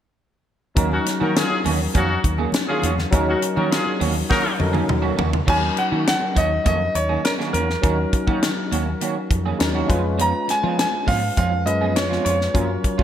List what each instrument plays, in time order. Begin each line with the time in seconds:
0.75 fretless electric bass D#2, clean electric guitar D#3 A#3 C#4 F#4, tine electric piano F#3 C#4 D#4 A#4, kick, closed hi-hat, muted conga, low conga
0.91 horn section C#4 D#4 F#4, muted clean electric guitar stroke, muted conga
1.05 muted clean electric guitar stroke, snare, closed hi-hat
1.20 clean electric guitar D#3 A#3 C#4 F#4, fretless electric bass D#3, horn section D#4 F#4 A#4, high conga
1.35 horn section C#4 F4 G#4, muted clean electric guitar stroke, snare, closed hi-hat, muted conga
1.49 muted clean electric guitar stroke, muted conga
1.64 fretless electric bass D#2, clean electric guitar D#3 A#3 C#4 F#4, open hi-hat, low conga
1.79 muted clean electric guitar stroke, high conga
1.94 fretless electric bass F2, clean electric guitar D#3 A#3 C#4 F#4, horn section C#4 D#4 F#4, kick, closed hi-hat, muted conga
2.09 muted clean electric guitar stroke, muted conga
2.24 fretless electric bass D#2, muted clean electric guitar stroke, kick, closed hi-hat
2.38 clean electric guitar D#3 A#3 C#4 G#4, high conga
2.52 muted clean electric guitar stroke, snare, closed hi-hat, muted conga, high conga
2.67 clean electric guitar D#3 A#3 C#4 F#4, horn section C#4 F4 G#4
2.82 fretless electric bass E2, clean electric guitar D#3 A#3 C#4 F#4, closed hi-hat, high conga
2.98 muted clean electric guitar stroke, snare, low conga
3.11 fretless electric bass D#2, clean electric guitar D#3 A#3 C#4 F#4, tine electric piano F#3 C#4 D#4 A#4, kick, closed hi-hat, low conga
3.27 horn section C#4 D#4 F#4, muted clean electric guitar stroke, muted conga
3.42 muted clean electric guitar stroke, closed hi-hat
3.56 fretless electric bass D#3, clean electric guitar D#3 A#3 C#4 F#4, horn section D#4 F#4 A#4, high conga
3.71 horn section C#4 F4 G#4, snare, closed hi-hat
3.86 muted clean electric guitar stroke, muted conga
4.00 fretless electric bass D#2, clean electric guitar D#3 A#3 C#4 F#4, open hi-hat, low conga
4.15 muted clean electric guitar stroke, high conga
4.29 clean electric guitar D#3 A#3 C#4 F#4, horn section D#4 F#4 A#4, kick, snare, muted conga
4.43 muted clean electric guitar stroke, muted conga
4.59 fretless electric bass F2, tine electric piano F#3 C#4 D#4 A4, muted clean electric guitar stroke, high tom
4.67 tine electric piano A#4
4.73 clean electric guitar D#3 A#3 C#4 G#4, high tom, high conga
4.88 fretless electric bass D#2, muted clean electric guitar stroke, mid tom, high conga
5.02 clean electric guitar D#3 A#3 C#4 F#4
5.16 fretless electric bass D#2, clean electric guitar D#3 A#3 C#4 F#4, floor tom, high conga
5.31 muted clean electric guitar stroke, floor tom, low conga
5.46 fretless electric bass D#2, clean electric guitar D#3 A#3 C#4 F#4, tine electric piano F#3 C#4 D#4 A#4, grand piano G#5, kick, crash
5.61 muted clean electric guitar stroke
5.76 grand piano F#5, muted clean electric guitar stroke, closed hi-hat
5.91 fretless electric bass D#3, clean electric guitar D#3 A#3 C#4 F#4
6.06 grand piano F#5, muted clean electric guitar stroke, snare, closed hi-hat
6.20 muted clean electric guitar stroke
6.35 fretless electric bass D#2, clean electric guitar D#3 A#3 C#4 F#4, grand piano D#5, kick, closed hi-hat
6.50 muted clean electric guitar stroke
6.65 fretless electric bass F2, clean electric guitar D#3 A#3 C#4 F#4, grand piano D#5, kick, closed hi-hat
6.80 muted clean electric guitar stroke
6.94 fretless electric bass D#2, grand piano C#5, muted clean electric guitar stroke, closed hi-hat
7.09 clean electric guitar D#3 A#3 C#4 G#4
7.25 grand piano A#4, snare, closed hi-hat
7.39 clean electric guitar D#3 A#3 C#4 F#4, snare
7.53 fretless electric bass E2, clean electric guitar D#3 A#3 C#4 F#4, grand piano A#4, closed hi-hat
7.68 muted clean electric guitar stroke, snare
7.82 fretless electric bass D#2, clean electric guitar D#3 A#3 C#4 F#4, tine electric piano F#3 C#4 D#4 A#4, kick, closed hi-hat
7.98 muted clean electric guitar stroke
8.13 muted clean electric guitar stroke, kick, closed hi-hat
8.27 fretless electric bass D#3, clean electric guitar D#3 A#3 C#4 F#4, kick
8.42 muted clean electric guitar stroke, snare, closed hi-hat
8.57 muted clean electric guitar stroke
8.71 fretless electric bass D#2, clean electric guitar D#3 A#3 C#4 F#4, closed hi-hat
8.87 muted clean electric guitar stroke
9.01 clean electric guitar D#3 A#3 C#4 F#4, closed hi-hat
9.16 muted clean electric guitar stroke
9.30 fretless electric bass F2, muted clean electric guitar stroke, kick, closed hi-hat
9.46 clean electric guitar D#3 A#3 C#4 G#4
9.59 fretless electric bass D#2, tine electric piano F#3 C#4 D#4 A#4, muted clean electric guitar stroke, snare, closed hi-hat
9.75 clean electric guitar D#3 A#3 C#4 F#4
9.87 fretless electric bass F2, clean electric guitar F3 B3 C#4 F4, tine electric piano G#3 C#4 F4 B4, kick, closed hi-hat
10.04 muted clean electric guitar stroke
10.18 clean electric guitar F3 B3 C#4 F4, grand piano A#5, closed hi-hat
10.33 muted clean electric guitar stroke
10.48 grand piano G#5, muted clean electric guitar stroke, snare, closed hi-hat
10.63 fretless electric bass F3, clean electric guitar F3 B3 C#4 F4
10.77 grand piano G#5, muted clean electric guitar stroke, snare, closed hi-hat
10.92 muted clean electric guitar stroke
11.06 fretless electric bass G#2, clean electric guitar F3 B3 C#4 F4, grand piano F5, kick, open hi-hat
11.21 muted clean electric guitar stroke
11.37 fretless electric bass F2, clean electric guitar F3 B3 C#4 F4, grand piano F5, kick, closed hi-hat
11.52 muted clean electric guitar stroke
11.65 fretless electric bass F#2, tine electric piano G#3 C#4 F4 B4, grand piano D#5, muted clean electric guitar stroke, closed hi-hat
11.81 clean electric guitar F3 B3 C#4 G#4
11.95 fretless electric bass F2, grand piano C#5, muted clean electric guitar stroke, snare, closed hi-hat
12.10 clean electric guitar F3 B3 C#4 F4, snare
12.25 fretless electric bass F2, clean electric guitar F3 B3 C#4 F4, grand piano C#5, closed hi-hat
12.40 muted clean electric guitar stroke, snare
12.53 fretless electric bass F#2, clean electric guitar F3 A#3 C#4 F4, tine electric piano F#3 C#4 F4 A#4, kick, closed hi-hat
12.69 muted clean electric guitar stroke
12.84 muted clean electric guitar stroke, kick, closed hi-hat
12.98 clean electric guitar F3 A#3 C#4 F4, fretless electric bass F#3, kick